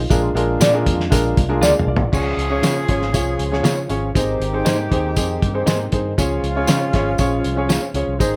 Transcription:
Already playing: tonewheel organ F4
0.10 fingered electric bass A#1, tonewheel organ G#3 A#3 D4, grand piano D4 F4 G#4 A#4, kick, closed hi-hat, tambourine
0.34 fingered electric bass A#1, grand piano D4 F4 G#4 A#4, closed hi-hat
0.60 fingered electric bass A#2, clean electric guitar F4 G#4 D5, snare, closed hi-hat, tambourine
0.73 grand piano D4 F4 G#4 A#4
0.86 fingered electric bass F2, kick, closed hi-hat
1.00 snare
1.10 fingered electric bass A#1, grand piano D4 F4 G#4 A#4, kick, closed hi-hat, tambourine
1.37 fingered electric bass C2, kick, closed hi-hat
1.49 grand piano D4 F4 G#4 A#4
1.61 fingered electric bass D2, clean electric guitar F4 G#4 D5, grand piano G#4 F5, snare, tambourine
1.79 mid tom
1.86 fingered electric bass C2, grand piano F4 D5
1.96 fingered electric bass A#1, floor tom
2.12 fingered electric bass C#2, tonewheel organ F3 C#4 F4, grand piano C#4 F4 G#4 C#5, horn section C#4 F4 G#4, kick, crash, tambourine
2.37 fingered electric bass C#2, closed hi-hat
2.50 grand piano C#4 F4 G#4 C#5
2.62 fingered electric bass C#3, clean electric guitar F4 G#4 C#5, snare, closed hi-hat, tambourine
2.88 fingered electric bass G#1, grand piano C#4 F4 G#4 C#5, kick, closed hi-hat
3.02 snare
3.13 fingered electric bass C2, grand piano C#4 F4 G#4 C#5, kick, closed hi-hat, tambourine
3.39 fingered electric bass C#2, closed hi-hat
3.52 grand piano C#4 F4 G#4 C#5, snare
3.63 fingered electric bass C#3, clean electric guitar F4 G#4 C#5, snare, closed hi-hat, tambourine
3.89 fingered electric bass G#1, grand piano C#4 F4 G#4 C#5, closed hi-hat
4.15 fingered electric bass G#1, tonewheel organ D#3 C4 D#4, grand piano C4 D#4 G#4 C5, horn section C4 D#4 G4, kick, closed hi-hat, tambourine
4.40 fingered electric bass G#1, closed hi-hat
4.53 grand piano C4 D#4 G#4 C5
4.65 fingered electric bass G#2, clean electric guitar D#4 G#4 C5, snare, closed hi-hat, tambourine
4.91 fingered electric bass D#2, grand piano C4 D#4 G#4 C5, kick, closed hi-hat
5.16 fingered electric bass F2, grand piano C4 D#4 G#4 C5, kick, closed hi-hat, tambourine
5.42 fingered electric bass G2, kick, closed hi-hat
5.54 grand piano C4 D#4 G#4 C5
5.66 fingered electric bass G#2, clean electric guitar D#4 G#4 C5, snare, closed hi-hat, tambourine
5.92 fingered electric bass G2, grand piano C4 D#4 G#4 C5, kick, closed hi-hat
6.17 fingered electric bass C#2, tonewheel organ F3 C#4 F4, horn section G#3 C#4 F4, grand piano C#4 F4 G#4 C#5, kick, closed hi-hat, tambourine
6.43 fingered electric bass C#2, closed hi-hat
6.56 grand piano C#4 F4 G#4 C#5
6.67 fingered electric bass C#3, clean electric guitar F4 G#4 C#5, snare, closed hi-hat, tambourine
6.93 fingered electric bass G#1, grand piano C#4 F4 G#4 C#5, kick, snare, closed hi-hat
7.18 fingered electric bass A#1, grand piano C#4 F4 G#4 C#5, kick, closed hi-hat, tambourine
7.44 fingered electric bass C2, closed hi-hat
7.56 grand piano C#4 F4 G#4 C#5
7.69 clean electric guitar F4 G#4 C#5, snare, closed hi-hat, tambourine
7.94 fingered electric bass C#2, grand piano C#4 F4 G#4 C#5, closed hi-hat
8.08 fingered electric bass C2
8.19 fingered electric bass G#1, tonewheel organ D#3 C4 D#4, grand piano C4 D#4 G#4 C5, horn section C4 D#4 G#4, kick, closed hi-hat, tambourine

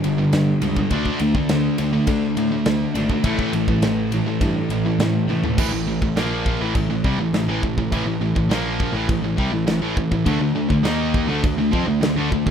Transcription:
Already playing: distorted electric guitar G2 D3 G3
0.04 picked electric bass G1, distorted electric guitar G2 D3, ride
0.19 distorted electric guitar G2 D3
0.33 distorted electric guitar G2 D3, picked electric bass G2, snare, ride
0.61 picked electric bass C#2, distorted electric guitar G2 D3 G3, ride
0.77 distorted electric guitar G2 D3, kick
0.90 picked electric bass D2, distorted electric guitar D3 A3 D4, kick, ride
1.06 kick
1.19 picked electric bass D2, distorted electric guitar D3 A3, ride
1.35 distorted electric guitar D3 A3, kick
1.49 picked electric bass D2, distorted electric guitar D3 A3, snare, ride
1.78 picked electric bass D2, distorted electric guitar D3 A3, ride
1.93 distorted electric guitar D3 A3
2.07 picked electric bass D3, distorted electric guitar D3 A3, kick, ride
2.37 picked electric bass A2, distorted electric guitar D3 A3, ride
2.52 distorted electric guitar D3 A3
2.66 picked electric bass D2, distorted electric guitar D3 A3, snare, ride
2.94 picked electric bass G#1, distorted electric guitar D3 A3 D4, ride
3.09 distorted electric guitar D3 A3, kick
3.24 picked electric bass A1, distorted electric guitar A2 E3 A3, kick, ride
3.39 kick
3.53 picked electric bass A1, distorted electric guitar A2 E3, ride
3.68 distorted electric guitar A2 E3, kick
3.82 picked electric bass A1, distorted electric guitar A2 E3, snare, ride
4.12 distorted electric guitar A2 E3, ride
4.26 distorted electric guitar A2 E3
4.41 picked electric bass G2, distorted electric guitar A2 E3, kick, ride
4.70 picked electric bass A1, distorted electric guitar A2 E3, ride
4.85 distorted electric guitar A2 E3
4.99 picked electric bass A2, distorted electric guitar A2 E3, snare, ride
5.27 picked electric bass A2, distorted electric guitar A2 E3 A3, high tom
5.43 distorted electric guitar A2 E3, floor tom
5.58 picked electric bass A1, distorted electric guitar A2 E3, kick, crash, china
5.73 picked electric bass A1, distorted electric guitar A2 E3
5.87 picked electric bass A1, distorted electric guitar A2 E3
6.02 picked electric bass A1, distorted electric guitar A2 E3, kick
6.16 picked electric bass A#1, distorted electric guitar A#2 F3 A#3, snare, china
6.46 kick
6.61 picked electric bass A1, distorted electric guitar A2 E3
6.75 picked electric bass A1, distorted electric guitar A2 E3, kick, china
6.89 picked electric bass A1, distorted electric guitar A2 E3
7.04 picked electric bass C2, distorted electric guitar C3 G3, kick
7.18 picked electric bass A1, distorted electric guitar A2 E3
7.33 picked electric bass A1, distorted electric guitar A2 E3, snare, china
7.48 picked electric bass A1, distorted electric guitar A2 E3
7.63 picked electric bass A1, distorted electric guitar A2 E3, kick
7.77 picked electric bass A1, distorted electric guitar A2 E3, kick
7.92 picked electric bass A1, distorted electric guitar A2 E3, kick, china
8.06 picked electric bass A1, distorted electric guitar A2 E3
8.21 picked electric bass A1, distorted electric guitar A2 E3
8.35 picked electric bass A1, distorted electric guitar A2 E3, kick
8.49 picked electric bass A#1, distorted electric guitar A#2 F3 A#3, snare, china
8.80 kick
8.92 picked electric bass A1, distorted electric guitar A2 E3
9.08 picked electric bass A1, distorted electric guitar A2 E3, kick, china
9.22 picked electric bass A1, distorted electric guitar A2 E3
9.37 picked electric bass C2, distorted electric guitar C3 G3, kick
9.52 picked electric bass A1, distorted electric guitar A2 E3
9.67 picked electric bass A1, distorted electric guitar A2 E3, snare, china
9.81 picked electric bass A1, distorted electric guitar A2 E3
9.96 picked electric bass A1, distorted electric guitar A2 E3, kick
10.11 picked electric bass A1, distorted electric guitar A2 E3, kick
10.25 picked electric bass D2, distorted electric guitar D3 A3, kick, china
10.40 picked electric bass D2, distorted electric guitar D3 A3
10.54 picked electric bass D2, distorted electric guitar D3 A3
10.70 picked electric bass D2, distorted electric guitar D3 A3, kick
10.83 picked electric bass D#2, distorted electric guitar D#3 A#3 D#4, snare, china
11.14 kick
11.28 picked electric bass D2, distorted electric guitar D3 A3
11.44 picked electric bass D2, distorted electric guitar D3 A3, kick, china
11.57 picked electric bass D2, distorted electric guitar D3 A3
11.73 picked electric bass F2, distorted electric guitar F3 C4, kick
11.87 picked electric bass D2, distorted electric guitar D3 A3
12.01 picked electric bass D2, distorted electric guitar D3 A3, snare, china
12.16 picked electric bass D2, distorted electric guitar D3 A3
12.32 picked electric bass D2, distorted electric guitar D3 A3, kick
12.46 picked electric bass D2, distorted electric guitar D3 A3, kick

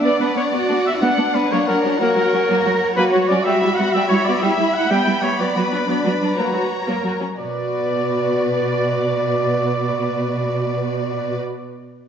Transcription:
Already playing: cello section D4, violin section D5 F#5
0.02 viola section B3, violin section B3, trumpet section D5
0.20 viola section B3, violin section D4, trumpet section B4
0.36 viola section B3, violin section B3, trumpet section C#5
0.52 violin section B3, viola section B3, cello section F#4, trumpet section D5
0.69 viola section B3, violin section D4
0.86 trumpet section E5
1.02 viola section B3, violin section B3, cello section D4, trumpet section F#5
1.17 viola section B3, violin section D4
1.34 viola section B3, violin section B3, trumpet section B4
1.51 viola section F#3, violin section A#3 C#5, trumpet section C#5
1.67 viola section F#3, violin section F#4, trumpet section A#4
1.84 viola section F#3, violin section C#4
2.00 viola section F#3, violin section A#3, cello section F#4, trumpet section A#4
2.17 viola section F#3, violin section F#4
2.33 viola section F#3, violin section C#4
2.49 viola section F#3, violin section A#3, cello section A#4
2.65 viola section F#3, violin section F#4
2.96 viola section F#3, violin section A#3, cello section F#4, trumpet section B4
3.13 viola section F#3, violin section F#4, trumpet section C#5
3.28 viola section F#3, violin section C#4, trumpet section D5
3.44 violin section G3 E5 B5, viola section G3, trumpet section E5
3.62 viola section G3, violin section E4
3.75 viola section G3, violin section B3, trumpet section F#5
3.92 viola section G3, violin section G3, trumpet section E5
4.08 viola section G3, violin section E4, trumpet section C#5
4.25 viola section G3, violin section B3, trumpet section D5
4.41 violin section G3, viola section G3, cello section E4, trumpet section E5
4.58 viola section G3, violin section E4
4.74 trumpet section F#5
4.91 violin section G3, viola section G3, cello section B3, trumpet section G5
5.07 viola section G3, violin section E4
5.22 viola section G3, violin section B3, trumpet section C#5
5.39 viola section F#3, violin section B3 D5, trumpet section D5
5.56 viola section F#3, violin section F#4, trumpet section B4
5.72 viola section F#3, violin section D4
5.88 viola section F#3, violin section B3, cello section D4, trumpet section B4
6.05 viola section F#3, violin section F#4
6.22 viola section F#3, violin section D4
6.37 viola section F#3, violin section A#3 C#5 A#5, cello section F#4
6.53 viola section F#3, violin section F#4
6.87 viola section F#3, violin section A#3, cello section A#4
7.03 viola section F#3, violin section F#4
7.20 viola section F#3, violin section C#4
7.37 cello section B2, viola section F#4, violin section B4 D5, trumpet section D5

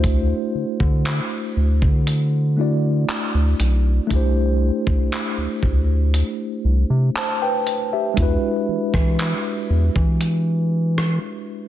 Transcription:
Already playing: analog synth bass D2, tine electric piano A3 D4 E4 F#4 C5
0.04 kick, closed hi-hat
0.55 analog synth bass D3
0.80 analog synth bass D3, kick
1.05 clap, closed hi-hat
1.57 analog synth bass D2
1.82 analog synth bass D3, kick
2.07 closed hi-hat
2.57 tine electric piano A3 D4 E4 F#4
2.61 tine electric piano D5
3.09 clap, closed hi-hat
3.34 analog synth bass D2
3.60 analog synth bass B1, closed hi-hat
4.07 analog synth bass C2, tine electric piano A3 D4, kick, closed hi-hat
4.11 tine electric piano E4 G4
4.16 tine electric piano C5
4.87 kick
5.12 clap, closed hi-hat
5.37 analog synth bass D2
5.63 analog synth bass D2, kick
6.14 closed hi-hat
6.65 analog synth bass C2
6.90 analog synth bass C3
7.16 tine electric piano C5 A5, clap, closed hi-hat
7.42 tine electric piano B4 G5
7.67 closed hi-hat
7.93 tine electric piano G4 E5
8.14 analog synth bass E2, tine electric piano G#3 D4, kick, closed hi-hat
8.18 tine electric piano E4 F#4
8.22 tine electric piano B4
8.69 analog synth bass E3
8.94 analog synth bass E3, kick, cross-stick
9.19 clap, closed hi-hat
9.70 analog synth bass E2
9.96 analog synth bass E3, kick
10.21 closed hi-hat
10.98 cross-stick

